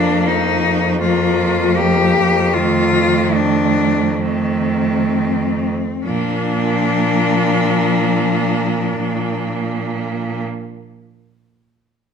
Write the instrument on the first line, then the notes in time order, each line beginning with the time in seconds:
cello
Already playing: F2 F3 A#3 D4
0.28 D#4
1.00 F3 A#3 F4
1.76 G4
2.54 D#3 F4
2.58 A3
3.36 D4
4.22 D#3 A3 C4
6.04 A#2 F3 A#3 D4